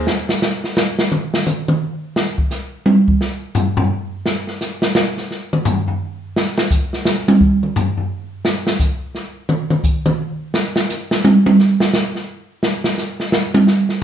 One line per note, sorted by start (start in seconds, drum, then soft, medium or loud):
0.07 snare medium
0.29 snare medium
0.42 snare medium
0.42 hi-hat pedal medium
0.64 snare soft
0.77 snare medium
0.99 snare medium
1.12 mid tom medium
1.34 snare medium
1.47 hi-hat pedal medium
1.47 mid tom medium
1.68 mid tom medium
2.16 snare medium
2.38 kick medium
2.51 snare soft
2.51 hi-hat pedal medium
2.86 high tom medium
3.08 kick medium
3.21 snare medium
3.55 floor tom medium
3.55 hi-hat pedal medium
3.77 floor tom medium
4.26 snare medium
4.47 snare soft
4.61 snare soft
4.61 hi-hat pedal medium
4.82 snare medium
4.95 snare medium
5.17 snare soft
5.31 snare soft
5.53 mid tom medium
5.65 floor tom medium
5.65 hi-hat pedal medium
5.88 floor tom soft
6.36 snare medium
6.58 snare medium
6.71 kick medium
6.71 hi-hat pedal medium
6.93 snare soft
7.05 snare medium
7.28 high tom loud
7.41 kick medium
7.63 mid tom soft
7.76 floor tom medium
7.76 hi-hat pedal medium
7.97 floor tom soft
8.45 snare medium
8.67 snare medium
8.80 kick medium
8.80 hi-hat pedal medium
9.15 snare soft
9.49 mid tom medium
9.70 mid tom medium
9.84 kick medium
9.84 hi-hat pedal medium
10.06 mid tom loud
10.54 snare medium
10.76 snare medium
10.89 snare soft
10.89 hi-hat pedal medium
11.11 snare medium
11.24 high tom loud
11.46 high tom medium
11.59 snare soft
11.80 snare medium
11.93 snare medium
11.93 hi-hat pedal medium
12.15 snare soft
12.63 snare medium
12.84 snare medium
12.98 snare soft
12.98 hi-hat pedal medium
13.20 snare medium
13.32 snare loud
13.54 high tom loud
13.67 snare medium
13.89 snare soft